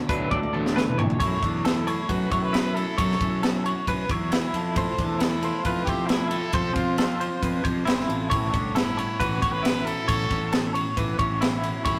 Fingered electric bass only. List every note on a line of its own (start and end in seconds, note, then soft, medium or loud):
0.09 0.26 D2 medium
0.31 0.74 D2 medium
0.87 1.12 E2 medium
1.20 1.37 F#2 medium
1.43 1.93 E2 medium
2.09 2.26 F#2 medium
2.32 2.83 F#2 medium
2.99 3.15 F#2 medium
3.21 3.71 F#2 medium
3.88 4.04 F#2 medium
4.10 4.43 E2 medium
4.53 4.87 F2 medium
4.98 5.49 E2 medium
5.65 5.82 F2 medium
5.87 6.38 F2 medium
6.54 6.71 F2 medium
6.76 7.27 F2 medium
7.42 7.59 F2 medium
7.65 7.82 F2 medium
7.86 8.06 G1 medium
8.07 8.28 A1 medium
8.31 8.48 A1 medium
8.54 9.04 G1 medium
9.20 9.37 A1 medium
9.42 9.93 A1 medium
10.09 10.26 A1 medium
10.31 10.82 A1 medium
10.97 11.14 A1 medium
11.19 11.70 A1 medium
11.86 11.99 A1 medium